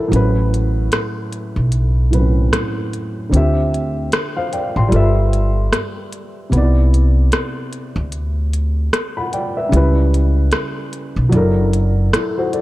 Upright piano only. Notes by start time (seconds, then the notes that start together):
Already playing: F#3 D4 E4 F#4 A4 A#4 C5 E5
0.08 A2 F#3
0.13 C#4 B4
2.10 A2 F#3 C4 B4
2.19 C#4
3.29 D3 C4 F4
3.35 G4 E5
4.37 C5 F5
4.53 D5 G5
4.77 G5 C6
4.89 G3 F4 A4
4.95 B4 E5
6.50 C3 B3
6.55 D#4 D5
6.61 E4
9.17 F#5 B5
9.33 D5 G5
9.57 B4 E5
9.69 C#3 G3
9.74 E4 B4
11.29 F#3 D4
11.33 E4 A4 A#4
12.13 E4 A4
12.38 F#4 C5
12.54 A4 D5